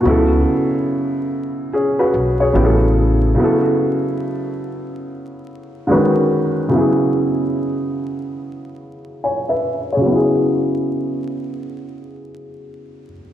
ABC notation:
X:1
M:4/4
L:1/16
Q:"Swing 16ths" 1/4=72
K:E
V:1 name="Felt piano"
z8 [CG] [FB]2 [Gc]2 z3 | z16 | z12 [cg] [Be]2 [Gc]- | [Gc] z12 z3 |]
V:2 name="Felt piano"
[B,,C,F,B,EA]12 [C,F,B,E=GA]4 | [C,F,B,EA]12 [=D,^D,G,CFB]4 | [C,F,B,EG]16 | [C,F,B,EG]16 |]
V:3 name="Upright bass" clef=bass
C,,2 z8 B,,,2 A,,,4 | z16 | z16 | z16 |]